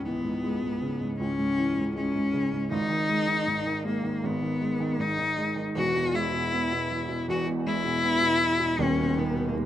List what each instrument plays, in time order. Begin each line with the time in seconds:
Already playing: felt piano C#2 G#2
0.05 felt piano E3, cello B3
0.24 felt piano G#2
0.44 felt piano G#3
0.63 felt piano G#2
0.82 felt piano C#3
1.01 felt piano G#2
1.20 felt piano C#2, cello C#4
1.39 felt piano G#2
1.58 felt piano E3
1.77 felt piano G#2
1.96 felt piano G#3, cello C#4
2.15 felt piano G#2
2.34 felt piano C#3
2.53 felt piano G#2
2.71 felt piano G#1 G#2, cello D#4
2.90 felt piano D#3
3.09 felt piano G#3
3.28 felt piano D#3
3.47 felt piano G#2
3.66 felt piano D#3
3.86 felt piano G#3, cello A#3
4.04 felt piano D#3
4.24 felt piano G#1 G#2, cello B3
4.42 felt piano D#3
4.61 felt piano G#3
4.80 felt piano D#3
4.99 felt piano G#2, cello D#4
5.18 felt piano D#3
5.37 felt piano G#3
5.56 felt piano D#3
5.75 felt piano E1 E2, cello F#4
5.95 felt piano B2
6.14 felt piano G#3, cello E4
6.33 felt piano B2
6.52 felt piano B3
6.72 felt piano B2
6.91 felt piano E3
7.09 felt piano B2
7.28 felt piano E1 E2, cello F#4
7.47 felt piano B2
7.66 felt piano G#3, cello E4
7.85 felt piano B2
8.04 felt piano B3
8.22 felt piano B2
8.42 felt piano E3
8.60 felt piano B2
8.79 felt piano D#1 D#2, cello C#4
8.98 felt piano B2
9.17 felt piano D#3, cello B3
9.36 felt piano B2
9.49 cello A#3
9.55 felt piano D#2, cello G#3